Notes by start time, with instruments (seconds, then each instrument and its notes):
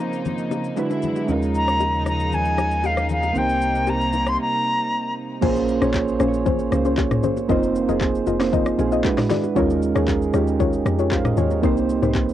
Already playing: string section C#3 F3 A#3 D#4, synth keys A#3 C4 D#4 F4 C5
0.00 low bongo
0.13 shaker
0.25 low conga, shaker
0.38 shaker
0.51 high bongo, low bongo, shaker
0.64 shaker
0.76 string section D3 F#3 G#3 E4, synth keys G#3 D4 E4 F#4 B4, high bongo, shaker
0.90 low bongo, shaker
1.02 low conga, shaker
1.16 high bongo, shaker
1.26 sub bass D#2, string section C#3 F3 D#4, synth keys G#3 C#4 D#4, low conga, shaker
1.31 synth keys F4 A#4
1.42 shaker
1.55 flute A#5, shaker
1.68 cross-stick, shaker
1.80 high bongo, shaker
1.94 shaker
2.06 flute A#5, cross-stick, low bongo, shaker
2.20 shaker
2.32 flute G#5, low conga, shaker
2.45 shaker
2.58 cross-stick, high bongo, low bongo, shaker
2.71 shaker
2.84 flute F5, high bongo, shaker
2.97 cross-stick, low bongo, shaker
3.09 flute F5, low conga, shaker
3.23 high bongo, shaker
3.33 sub bass C2, string section C3 G3 A#3, synth keys A#3 C4 D#4, low conga, shaker
3.37 synth keys G4 C5, flute G5
3.49 shaker
3.61 shaker
3.75 shaker
3.87 flute A#5, high bongo, shaker
4.01 shaker
4.13 low bongo, shaker
4.27 flute C6, cross-stick, shaker
4.41 flute A#5
5.41 log drum bass A#1, synth keys A#3 C#4 F4 G#4 C5, synth pluck C#4 G#4 C5, kick, crash, low conga, shaker
5.56 shaker
5.68 shaker
5.81 log drum bass A#1, synth keys A#3 C#4 F4 G#4 C#5, synth pluck C#4 G#4 C5, cross-stick, low bongo, shaker
5.94 kick, clap, high bongo, shaker
6.08 shaker
6.19 log drum bass A#1, synth keys A#3 C#4 F4 G#4 C5, synth pluck C#4 G#4 C5, cross-stick, shaker
6.28 synth keys C#5
6.34 shaker
6.46 synth pluck C#4 G#4 C5, kick, low conga, shaker
6.59 shaker
6.71 log drum bass C#2, synth keys A#3 C#4 F4 G#4 C5, cross-stick, high bongo, low bongo, shaker
6.85 synth pluck C#4 G#4 C5, shaker
6.97 kick, clap, high bongo, shaker
7.11 cross-stick, mid tom, low bongo, shaker
7.23 log drum bass A#1, synth pluck C#4 G#4 C5, low conga, shaker
7.37 high bongo, shaker
7.48 log drum bass F1, synth keys A#3 C4 D#4 F4 C5, synth pluck F4 A#4 D#5, kick, low conga, shaker
7.63 shaker
7.75 shaker
7.88 log drum bass F1, synth keys A#3 C4 D#4 F4 G#4, synth pluck F4 A#4 D#5, low bongo, shaker
8.01 kick, clap, high bongo, shaker
8.15 shaker
8.27 log drum bass F1, synth pluck F4 A#4 D#5, shaker
8.39 synth keys A#3 C4 D#4 F4 C5, cross-stick, snare, shaker
8.52 synth pluck F4 A#4 D#5, kick, low conga, shaker
8.66 cross-stick, shaker
8.77 log drum bass A#1, synth keys A#3 C4 D#4 F4 G#4, high bongo, low bongo, shaker
8.92 synth pluck F4 A#4 D#5, shaker
9.03 synth keys G#3 D4 E4 F#4 B4, kick, clap, high bongo, shaker
9.18 cross-stick, snare, mid tom, low bongo, shaker
9.30 synth pluck F#4 G#4 D5, snare, low conga, shaker
9.44 high bongo, shaker
9.55 log drum bass D#2, synth keys G#3 C#4 D#4 F4 A#4, synth pluck F4 G#4 C#5, kick, low conga, shaker
9.70 shaker
9.82 shaker
9.94 log drum bass D#2, synth keys G#3 C#4 D#4 F4 G#4, synth pluck F4 G#4 C#5, cross-stick, low bongo, shaker
10.08 kick, clap, high bongo, shaker
10.22 shaker
10.33 log drum bass D#2, synth keys G#3 C#4 D#4 F4 G4, synth pluck F4 G#4 C#5, cross-stick, shaker
10.47 shaker
10.59 synth pluck F4 G#4 C#5, kick, low conga, shaker
10.73 shaker
10.85 log drum bass F2, cross-stick, high bongo, low bongo, shaker
10.99 synth pluck F4 G#4 C#5, shaker
11.11 synth keys C5 F5, kick, clap, high bongo, shaker
11.25 synth keys A#4 D#5, cross-stick, mid tom, low bongo, shaker
11.37 log drum bass D#2, synth pluck F4 G#4 C#5, synth keys G#4 C#5, low conga, shaker
11.51 synth keys F4 A#4, high bongo, shaker
11.62 log drum bass C2, synth keys A#3 C4 D#4 G4 C5, synth pluck D#4 A#4 C5, kick, low conga, shaker
11.77 shaker
11.89 shaker
12.01 log drum bass C2, synth keys A#3 C4 D#4 G4 B4, synth pluck D#4 A#4 C5, mid tom, low bongo, shaker
12.11 synth keys C5, kick, clap, high bongo, shaker
12.29 shaker